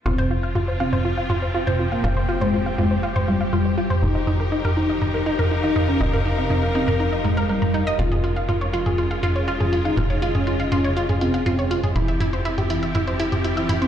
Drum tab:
HH |xxoxxxoxx-oxxxo-|-xoxxxoxxxoxxxox|xxoxxxoxxxoxxxox|xxoxxxoxxxoxxxox|
T2 |-o--o--o--o--o--|o--o--o--o--o--o|--o--o--o--o--o-|-o--o--o--o--o--|

HH |xxoxxxoxxxoxxxox|xxoxxxoxxxoxxxox|xxoxxxoxxxoxxxox|
T2 |-o--o--o--o--o--|o--o--o--o--o--o|--o--o--o--o--o-|